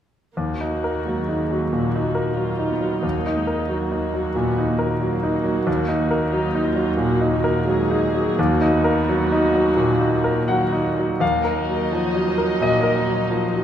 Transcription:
0.36 2.99 D#2 soft
0.36 1.69 D#2 soft
0.36 1.02 A#3 soft
0.36 1.68 F#4 soft
0.60 0.97 D#4 soft
0.84 1.20 A#4 soft
1.05 1.42 F#3 soft
1.05 1.72 G#3 soft
1.28 1.64 D#4 soft
1.51 1.86 F#3 soft
1.72 2.07 A#2 soft
1.72 2.36 A#3 soft
1.72 2.36 F#4 soft
1.95 2.29 D#4 soft
2.15 2.50 A#4 soft
2.36 2.72 F#3 soft
2.36 2.69 A#3 soft
2.36 3.03 F4 soft
2.59 2.94 D#4 soft
2.70 3.03 B3 soft
2.81 3.17 F#3 soft
3.02 4.33 D#2 soft
3.02 5.64 D#2 soft
3.02 3.36 A#3 soft
3.02 3.69 D#4 soft
3.26 3.62 D#4 soft
3.37 3.71 G#3 soft
3.47 3.84 A#4 soft
3.68 4.05 F#3 soft
3.68 4.37 A#3 soft
3.68 5.02 F#4 soft
3.91 4.27 D#4 soft
4.14 4.50 F#3 soft
4.36 4.72 A#2 soft
4.36 4.71 B3 soft
4.58 4.93 D#4 soft
4.70 6.31 A#3 soft
4.79 5.14 A#4 soft
5.00 5.36 F#3 soft
5.00 6.30 F#4 soft
5.23 5.58 D#4 soft
5.44 5.66 F#3 soft
5.67 6.94 D#2 soft
5.67 8.34 D#2 soft
5.88 6.23 D#4 soft
6.11 6.45 A#4 soft
6.32 6.67 F#3 soft
6.32 7.64 A#3 soft
6.32 6.65 D#4 soft
6.55 6.89 D#4 soft
6.65 6.98 F4 soft
6.75 7.11 F#3 soft
6.97 7.34 A#2 soft
6.97 7.31 F#4 soft
7.21 7.57 D#4 soft
7.33 7.66 F#4 soft
7.44 7.81 A#4 soft
7.66 8.05 F#3 soft
7.66 8.36 G#3 medium
7.66 8.37 G#4 soft
7.90 8.28 D#4 soft
8.14 8.52 F#3 soft
8.38 10.97 D#2 medium
8.38 9.74 D#2 medium
8.38 8.73 A#3 medium
8.38 10.46 F#4 medium
8.61 8.98 D#4 soft
8.73 9.77 B3 medium
8.84 9.22 A#4 soft
9.09 9.45 F#3 soft
9.32 9.69 D#4 soft
9.55 9.92 F#3 soft
9.77 10.14 A#2 soft
9.77 10.47 A#3 soft
10.01 10.38 D#4 soft
10.24 10.62 A#4 soft
10.48 10.88 F#3 soft
10.48 10.99 A#3 soft
10.48 10.99 F#4 soft
10.48 11.18 F#5 soft
10.72 11.12 D#4 soft
10.98 11.22 F#3 soft
11.20 12.57 D#2 soft
11.20 11.81 D#2 soft
11.20 13.64 F#3 soft
11.20 11.37 A#3 soft
11.20 13.64 D#4 soft
11.20 13.64 D#5 soft
11.20 12.58 F5 medium
11.38 11.57 D#4 soft
11.44 11.83 A#4 soft
11.57 11.75 F#4 soft
11.69 12.07 F#3 soft
11.75 11.93 A#4 soft
11.93 12.16 F3 soft
11.93 12.11 F#4 soft
12.11 12.28 D#4 soft
12.16 12.52 F#3 soft
12.28 12.45 A#3 soft
12.38 12.75 A#4 soft
12.44 12.61 D#4 soft
12.61 12.97 A#2 soft
12.61 13.19 A#2 soft
12.61 12.78 F#4 soft
12.61 13.60 D#5 soft
12.79 12.96 A#4 soft
12.83 13.20 A#4 soft
12.95 13.12 F#4 soft
13.06 13.43 F#3 soft
13.13 13.30 D#4 soft
13.30 13.53 F3 soft
13.30 13.47 A#3 soft
13.47 13.64 D#4 soft
13.54 13.64 F#3 soft

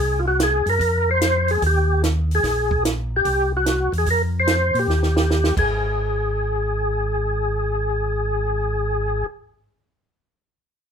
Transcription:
0.00 0.62 C2 medium
0.00 0.21 G#4 medium
0.19 0.26 F4 medium
0.28 0.40 F#4 medium
0.40 0.69 G#4 medium
0.40 snare medium
0.40 closed hi-hat medium
0.66 0.79 F#2 medium
0.66 1.10 A#4 medium
0.66 open hi-hat soft
0.80 1.58 F2 medium
0.80 kick soft
0.80 open hi-hat soft
1.11 1.51 C5 loud
1.21 snare medium
1.21 closed hi-hat medium
1.48 1.64 G#4 medium
1.48 open hi-hat soft
1.62 2.40 D#2 medium
1.62 kick soft
1.62 open hi-hat soft
1.67 2.02 G4 medium
2.04 snare medium
2.04 closed hi-hat medium
2.31 2.83 G#4 medium
2.31 open hi-hat soft
2.43 3.21 A#1 medium
2.43 kick soft
2.43 snare soft
2.43 open hi-hat soft
2.71 kick medium
2.85 snare medium
2.85 closed hi-hat medium
3.16 3.52 G4 loud
3.25 3.89 C2 medium
3.25 kick soft
3.25 open hi-hat soft
3.57 3.93 F#4 medium
3.66 snare medium
3.66 closed hi-hat medium
3.92 4.06 E2 medium
3.92 open hi-hat soft
3.98 4.09 G#4 medium
4.06 4.71 F2 medium
4.06 kick soft
4.06 open hi-hat soft
4.11 4.22 A#4 medium
4.40 4.79 C5 loud
4.47 snare medium
4.47 closed hi-hat medium
4.74 4.88 A#2 medium
4.74 open hi-hat soft
4.79 5.55 G4 medium
4.88 5.52 D#2 medium
4.88 snare soft
5.03 snare soft
5.17 snare medium
5.30 snare medium
5.44 snare medium
5.57 9.24 G#1 medium
5.57 9.26 G#4 medium
5.57 kick medium
5.57 crash medium

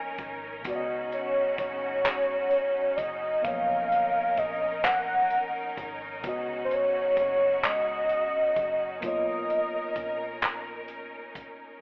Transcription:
0.00 0.15 A#1 medium
0.00 0.62 F3 medium
0.00 0.61 A#3 medium
0.00 0.60 B3 medium
0.00 11.77 C#4 medium
0.00 0.61 D#4 medium
0.00 0.63 A#4 medium
0.00 0.63 C#5 medium
0.00 0.64 D#5 medium
0.00 0.32 G#5 loud
0.18 0.66 G#1 medium
0.18 kick medium
0.18 closed hi-hat medium
0.62 1.54 C#2 loud
0.62 3.39 C#3 medium
0.62 3.42 C#3 medium
0.62 3.40 B3 medium
0.62 11.77 D#4 medium
0.62 3.42 F#4 medium
0.62 kick loud
0.62 closed hi-hat medium
0.67 3.41 F#4 medium
0.67 0.74 D5 medium
0.76 3.46 D#5 medium
1.12 1.56 C#5 medium
1.12 closed hi-hat soft
1.58 2.06 F#1 medium
1.58 2.98 C#5 loud
1.58 kick medium
1.58 closed hi-hat medium
2.05 2.94 C#2 loud
2.05 clap loud
2.05 closed hi-hat medium
2.51 closed hi-hat soft
2.96 3.41 F#1 medium
2.96 3.45 D#5 medium
2.96 kick medium
2.96 closed hi-hat medium
3.42 4.34 B1 loud
3.42 6.20 F3 medium
3.42 6.19 A#3 medium
3.42 6.18 B3 medium
3.42 6.20 A#4 medium
3.42 4.40 F5 loud
3.42 kick loud
3.42 closed hi-hat medium
3.48 6.21 C#5 medium
3.48 6.22 D#5 medium
3.92 closed hi-hat soft
4.37 5.73 A#1 medium
4.37 4.83 D#5 loud
4.37 kick medium
4.37 closed hi-hat medium
4.84 5.85 F#5 loud
4.84 clap loud
4.84 closed hi-hat medium
5.30 closed hi-hat soft
5.77 6.24 G#1 medium
5.77 kick medium
5.77 closed hi-hat medium
6.22 7.13 C#2 loud
6.22 8.98 C#3 medium
6.22 9.00 C#3 medium
6.22 8.99 B3 medium
6.22 9.00 F#4 medium
6.22 kick loud
6.22 closed hi-hat medium
6.27 9.00 F#4 medium
6.27 9.01 D#5 medium
6.64 6.74 C5 medium
6.71 7.18 C#5 loud
6.71 closed hi-hat soft
7.17 7.59 F#1 loud
7.17 7.66 C#5 loud
7.17 kick medium
7.17 closed hi-hat medium
7.63 8.52 C#2 loud
7.63 9.03 D#5 loud
7.63 clap loud
7.63 closed hi-hat medium
8.09 closed hi-hat soft
8.56 8.99 F#1 medium
8.56 kick medium
8.56 closed hi-hat medium
9.01 9.92 B1 loud
9.01 11.77 A#3 medium
9.01 11.77 B3 medium
9.01 11.78 F4 medium
9.01 kick loud
9.01 closed hi-hat medium
9.05 11.80 A#4 medium
9.05 11.79 C#5 medium
9.05 10.86 D#5 loud
9.05 11.80 D#5 medium
9.50 closed hi-hat soft
9.96 11.36 A#1 medium
9.96 kick medium
9.96 closed hi-hat medium
10.42 clap loud
10.42 closed hi-hat medium
10.88 closed hi-hat soft
11.35 11.78 G#1 medium
11.35 kick medium
11.35 closed hi-hat medium

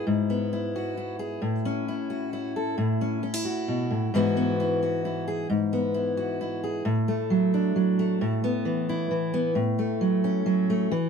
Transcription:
0.00 0.52 E4 soft
0.07 1.40 G#2 medium
0.30 1.40 B3 soft
0.53 0.97 E4 soft
0.76 1.19 F#4 soft
0.97 1.88 E4 soft
1.19 1.39 G#4 soft
1.42 2.75 A2 medium
1.65 2.75 C#4 soft
1.88 2.33 E4 soft
2.10 2.56 F#4 soft
2.33 3.23 E4 soft
2.56 2.76 A4 soft
2.78 3.89 A2 medium
3.01 3.22 C#4 soft
3.23 3.34 C#4 soft
3.34 4.13 E4 soft
3.45 4.16 F#4 soft
3.68 3.91 B2 soft
3.91 4.13 A2 medium
4.14 5.46 G#2 medium
4.14 6.85 E3 medium
4.14 4.36 B3 medium
4.14 4.60 E4 medium
4.14 4.82 F#4 medium
4.37 5.47 B3 soft
4.60 5.04 E4 medium
4.83 5.27 F#4 medium
5.05 5.47 E4 soft
5.28 5.47 G#4 medium
5.50 6.82 G#2 medium
5.73 6.82 B3 medium
5.94 6.39 E4 soft
6.17 6.62 F#4 soft
6.41 6.82 E4 soft
6.64 6.83 G#4 soft
6.85 8.21 A2 medium
7.08 7.99 A3 soft
7.30 7.75 F#3 medium
7.54 8.18 D4 soft
7.76 8.18 F#3 medium
7.99 8.43 A3 medium
8.21 9.53 A2 medium
8.44 9.32 B3 medium
8.65 9.10 E3 medium
8.89 9.53 E4 medium
9.11 9.56 E3 medium
9.34 9.53 B3 medium
9.55 10.88 A2 medium
9.79 10.69 A3 medium
10.01 10.45 F#3 medium
10.24 10.91 C#4 medium
10.46 10.88 F#3 medium
10.70 10.92 A3 medium
10.91 11.09 E3 medium

